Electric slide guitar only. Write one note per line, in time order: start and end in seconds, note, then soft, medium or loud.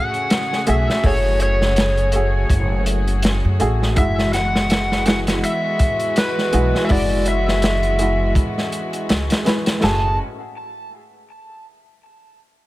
0.00 0.64 F#5 loud
0.69 1.06 E5 medium
1.06 1.41 C#5 medium
1.42 2.84 C#5 medium
3.98 4.31 E5 loud
4.34 5.07 F#5 loud
5.08 5.17 F#5 loud
5.45 6.19 E5 loud
6.18 6.86 B4 medium
6.85 6.90 E5 medium
6.91 7.28 D5 medium
7.28 8.33 E5 medium
9.84 10.17 A5 medium